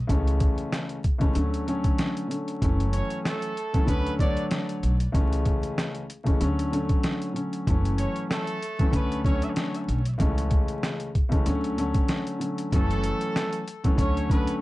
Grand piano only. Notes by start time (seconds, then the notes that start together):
0.07 C#2 E3 G#3 A3 C#4
1.18 C#2 E3 G#3 A3 C#4
1.35 D3 F#3 A3 C#4
1.66 D3 F#3 A3 C#4
2.28 D3 F#3 A3 C#4
2.62 E3 F#3 A3 C#4
3.73 E3 F#3 A3 C#4
3.85 D3 F#3 A3 C#4
4.19 D3 F#3 A3 C#5
5.12 C#2 E3 G#3 A3 C#4
6.24 C#2 E3 G#3 A3 C#4
6.41 D3 F#3 A3 C#4
6.71 D3 F#3 A3 C#4
7.33 D3 F#3 A3 C#4
7.67 E3 F#3 A3 C#4
8.79 E3 F#3 A3 C#4
8.90 D3 F#3 A3 C#4
9.25 D3 F#3 A3 C#4
10.18 C#2 E3 G#3 A3 C#4
11.29 C#2 E3 G#3 A3 C#4
11.46 D3 F#3 A3 C#4
11.77 D3 F#3 A3 C#4
12.38 D3 F#3 A3 C#4
12.72 E3 F#3 A3 C#4
13.84 E3 F#3 A3 C#4
13.95 D3 F#3 A3 C#4
14.30 D3 F#3 A3 C#4